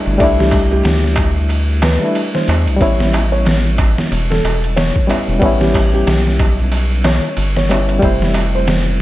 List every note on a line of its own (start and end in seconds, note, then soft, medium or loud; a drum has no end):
0.00 0.16 G3 medium
0.00 0.17 A3 medium
0.00 0.17 D4 medium
0.00 0.18 E4 loud
0.06 0.18 G1 medium
0.06 darbuka tek soft
0.18 0.82 C2 loud
0.18 1.97 G3 medium
0.18 1.98 A3 medium
0.18 1.99 D4 medium
0.18 kick loud
0.18 ride medium
0.18 darbuka tek medium
0.24 2.00 E4 loud
0.39 0.68 G4 medium
0.39 snare medium
0.51 kick medium
0.51 open hi-hat medium
0.51 darbuka tek medium
0.71 1.29 G4 medium
0.71 darbuka tek soft
0.84 1.98 D2 loud
0.84 snare loud
0.84 ride medium
0.84 darbuka tek soft
1.04 snare soft
1.16 kick medium
1.16 ride medium
1.16 darbuka tek loud
1.36 darbuka tek soft
1.49 ride medium
1.49 darbuka tek soft
1.82 2.29 B4 medium
1.82 snare loud
1.82 ride medium
1.82 darbuka tek loud
1.99 2.75 G3 medium
1.99 2.77 A3 medium
1.99 2.78 D4 medium
1.99 darbuka tek soft
2.05 2.79 E4 medium
2.15 ride medium
2.15 darbuka tek medium
2.34 2.76 C5 medium
2.34 snare medium
2.48 2.69 E2 loud
2.48 ride medium
2.48 darbuka tek loud
2.67 2.79 C2 medium
2.67 ride soft
2.67 darbuka tek soft
2.76 5.03 G3 loud
2.76 5.05 B3 medium
2.81 3.94 A1 loud
2.81 5.06 C#4 medium
2.81 5.06 E4 loud
2.81 3.27 C#5 loud
2.81 kick loud
2.81 ride medium
2.81 darbuka tek medium
3.00 snare medium
3.13 ride medium
3.13 darbuka tek medium
3.32 3.74 C#5 medium
3.32 darbuka tek soft
3.45 snare loud
3.45 ride medium
3.45 darbuka tek soft
3.78 kick medium
3.78 ride medium
3.78 darbuka tek medium
3.98 snare medium
3.98 darbuka tek soft
4.12 4.41 E1 medium
4.12 ride medium
4.12 darbuka tek soft
4.30 4.72 A4 medium
4.30 snare medium
4.44 4.92 E1 medium
4.44 ride medium
4.44 darbuka tek medium
4.62 ride soft
4.62 darbuka tek soft
4.76 5.22 C#5 medium
4.76 snare loud
4.76 ride medium
4.76 darbuka tek medium
4.96 kick loud
5.08 5.38 G3 loud
5.08 5.38 B3 medium
5.08 5.38 C#4 medium
5.08 5.39 E4 loud
5.08 ride medium
5.08 darbuka tek medium
5.28 5.40 E1 medium
5.28 darbuka tek soft
5.40 6.04 A1 medium
5.40 7.66 G3 loud
5.40 7.66 B3 medium
5.40 7.67 C#4 medium
5.40 kick loud
5.40 ride medium
5.40 darbuka tek soft
5.46 7.69 E4 loud
5.61 5.89 G4 medium
5.61 snare soft
5.74 kick medium
5.74 open hi-hat medium
5.74 darbuka tek medium
5.93 6.51 G4 loud
5.93 darbuka tek soft
6.07 7.20 B1 medium
6.07 snare loud
6.07 ride medium
6.07 darbuka tek medium
6.27 snare soft
6.39 kick medium
6.39 ride medium
6.39 darbuka tek medium
6.59 darbuka tek soft
6.72 ride medium
6.72 darbuka tek medium
7.04 7.51 C#5 medium
7.04 snare loud
7.04 ride medium
7.04 darbuka tek medium
7.24 darbuka tek soft
7.37 8.00 G1 medium
7.37 ride medium
7.37 darbuka tek soft
7.57 7.99 C#5 medium
7.57 snare medium
7.69 7.98 G3 loud
7.69 7.99 B3 medium
7.69 8.00 C#4 medium
7.69 8.00 E4 loud
7.69 ride medium
7.69 darbuka tek medium
7.89 ride soft
7.89 darbuka tek soft
7.99 9.02 F1 loud
7.99 9.02 G3 loud
7.99 9.02 A3 medium
7.99 8.49 C5 loud
7.99 kick loud
7.99 ride medium
7.99 darbuka tek medium
8.04 9.02 C4 medium
8.04 9.02 E4 loud
8.22 snare medium
8.34 ride medium
8.34 darbuka tek medium
8.55 8.97 C5 loud
8.55 darbuka tek soft
8.67 snare loud
8.67 ride loud
8.67 darbuka tek soft